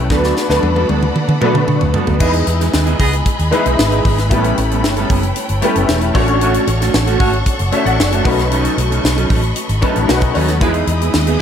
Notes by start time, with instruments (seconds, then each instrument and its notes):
Already playing: fingered electric bass B1, grand piano A3 C#4 E4 G4 B4, string section A4 B5
0.09 fingered electric bass D2, clean electric guitar F#3 B3 D4 A4, grand piano A3 B3 D4 F#4 B4, string section D5 F#5, kick, snare
0.24 snare
0.36 muted clean electric guitar stroke, snare
0.48 fingered electric bass D2, clean electric guitar F#3 B3 D4 A4, grand piano A3 B3 D4 F#4 B4, snare
0.62 fingered electric bass E2, muted clean electric guitar stroke, high tom
0.76 clean electric guitar F#3 B3 D4 A4, high tom
0.89 fingered electric bass D2, clean electric guitar F#3 B3 D4 A4, high tom
1.03 muted clean electric guitar stroke, mid tom
1.15 muted clean electric guitar stroke, mid tom
1.28 fingered electric bass D3, muted clean electric guitar stroke, mid tom
1.41 clean electric guitar F#3 B3 D4 A4, grand piano A3 B3 D4 F#4 B4, mid tom
1.54 fingered electric bass D3, clean electric guitar F#3 B3 D4 A4, mid tom
1.68 fingered electric bass D3, muted clean electric guitar stroke, mid tom
1.81 fingered electric bass D2, muted clean electric guitar stroke, floor tom
1.94 clean electric guitar F#3 B3 D4 A4, floor tom
2.07 fingered electric bass D2, clean electric guitar F#3 B3 D4 A4, floor tom
2.19 clean electric guitar E3 B3 D#4 G#4, grand piano G#3 B3 D#4 E4 B4, horn section B3 G#4 D#5, string section G#4 D#5 G#5 B5, kick, crash
2.33 closed hi-hat
2.47 fingered electric bass E2, muted clean electric guitar stroke, closed hi-hat
2.59 clean electric guitar E3 B3 D#4 G#4, snare, closed hi-hat
2.73 fingered electric bass D#2, muted clean electric guitar stroke, snare
2.86 clean electric guitar E3 B3 D#4 G#4, closed hi-hat
2.99 fingered electric bass C#2, clean electric guitar E3 B3 D#4 G#4, horn section B3 G#4 D#5, kick, open hi-hat
3.12 muted clean electric guitar stroke, closed hi-hat
3.25 muted clean electric guitar stroke, kick, closed hi-hat
3.39 fingered electric bass D#2, muted clean electric guitar stroke, closed hi-hat
3.51 clean electric guitar E3 B3 D#4 G#4, grand piano G#3 B3 D#4 E4 B4, closed hi-hat
3.65 fingered electric bass B1, clean electric guitar E3 B3 D#4 G#4, closed hi-hat
3.79 fingered electric bass G#1, muted clean electric guitar stroke, snare
3.92 clean electric guitar E3 B3 D#4 G#4, closed hi-hat
4.05 fingered electric bass G#1, clean electric guitar E3 B3 D#4 G#4, kick, open hi-hat
4.18 muted clean electric guitar stroke, snare, closed hi-hat
4.29 fingered electric bass A1, clean electric guitar G3 B3 C#4 A4, grand piano A3 B3 E4 G4 B4, string section A4 C#5 G5, kick, closed hi-hat
4.36 grand piano C#4
4.44 closed hi-hat
4.58 fingered electric bass A1, muted clean electric guitar stroke, closed hi-hat
4.70 clean electric guitar G3 B3 C#4 A4, closed hi-hat
4.84 fingered electric bass G1, muted clean electric guitar stroke, snare
4.96 clean electric guitar G3 B3 C#4 A4, closed hi-hat
5.09 fingered electric bass F#1, clean electric guitar G3 B3 C#4 A4, kick, open hi-hat
5.23 muted clean electric guitar stroke, closed hi-hat
5.36 muted clean electric guitar stroke, closed hi-hat
5.49 fingered electric bass G1, muted clean electric guitar stroke, closed hi-hat
5.62 clean electric guitar G3 B3 C#4 A4, grand piano A3 C#4 E4 G4 B4, closed hi-hat
5.75 fingered electric bass F#1, clean electric guitar G3 B3 C#4 A4, closed hi-hat
5.89 fingered electric bass E1, muted clean electric guitar stroke, snare
6.01 muted clean electric guitar stroke, closed hi-hat
6.14 fingered electric bass A1, grand piano A3 C#4 D4 F#4 C#5, clean electric guitar A3 C#4 F#4 A4, string section C#5 F#5 C#6, kick, open hi-hat
6.28 clean electric guitar A3 C#4 F#4 A4, closed hi-hat
6.41 horn section A3 F#4 C#5, clean electric guitar A3 C#4 F#4 A4, closed hi-hat
6.54 closed hi-hat
6.67 fingered electric bass A1, muted clean electric guitar stroke, closed hi-hat
6.80 clean electric guitar A3 C#4 F#4 A4, snare, closed hi-hat
6.94 fingered electric bass A1, muted clean electric guitar stroke, snare
7.06 clean electric guitar A3 C#4 F#4 A4, closed hi-hat
7.19 fingered electric bass G#1, clean electric guitar A3 C#4 F#4 A4, horn section A3 F#4 C#5, kick, open hi-hat
7.33 muted clean electric guitar stroke, closed hi-hat
7.46 muted clean electric guitar stroke, kick, closed hi-hat
7.59 fingered electric bass F#1, muted clean electric guitar stroke, closed hi-hat
7.72 clean electric guitar A3 C#4 F#4 A4, grand piano C#5 E5, closed hi-hat
7.85 fingered electric bass A1, clean electric guitar A3 C#4 F#4 A4, grand piano D5 F#5, closed hi-hat
7.98 fingered electric bass F#1, muted clean electric guitar stroke, snare
8.11 clean electric guitar A3 C#4 F#4 A4, grand piano F#5 A5, closed hi-hat
8.24 fingered electric bass B1, clean electric guitar F#3 C#4 D#4 A4, grand piano A3 C#4 D#4 F#4 B4, string section D#5 B5, kick, open hi-hat
8.39 muted clean electric guitar stroke, snare, closed hi-hat
8.51 clean electric guitar F#3 C#4 D#4 A4, closed hi-hat
8.65 closed hi-hat
8.77 fingered electric bass B1, muted clean electric guitar stroke, closed hi-hat
8.90 clean electric guitar F#3 C#4 D#4 A4, closed hi-hat
9.03 fingered electric bass B1, muted clean electric guitar stroke, snare
9.17 clean electric guitar F#3 C#4 D#4 A4, closed hi-hat
9.30 fingered electric bass A1, clean electric guitar F#3 C#4 D#4 A4, kick, open hi-hat
9.43 muted clean electric guitar stroke, closed hi-hat
9.56 muted clean electric guitar stroke, closed hi-hat
9.69 fingered electric bass G#1, muted clean electric guitar stroke, closed hi-hat
9.81 clean electric guitar F#3 C#4 D#4 A4, grand piano A3 C#4 D#4 F#4 B4 A5, kick, closed hi-hat
9.95 fingered electric bass A1, clean electric guitar F#3 C#4 D#4 A4, closed hi-hat
10.08 fingered electric bass B1, grand piano A3 C#4 D#4 F#4 B4 F#5, string section A4 D#5, muted clean electric guitar stroke, snare
10.21 kick, closed hi-hat
10.34 fingered electric bass D#2, clean electric guitar F#3 C#4 D#4 A4, grand piano C#5, open hi-hat
10.48 clean electric guitar F#3 C#4 D#4 A4, snare, closed hi-hat
10.60 fingered electric bass E2, clean electric guitar E3 B3 D#4 G#4, grand piano G#3 B3 D#4 E4 B4, horn section G#3 E4 B4, string section G#4 D#5 D#6, kick, closed hi-hat
10.74 closed hi-hat
10.87 fingered electric bass E2, muted clean electric guitar stroke, closed hi-hat
11.01 clean electric guitar E3 B3 D#4 G#4, closed hi-hat
11.14 fingered electric bass D#2, muted clean electric guitar stroke, snare
11.26 clean electric guitar E3 B3 D#4 G#4, closed hi-hat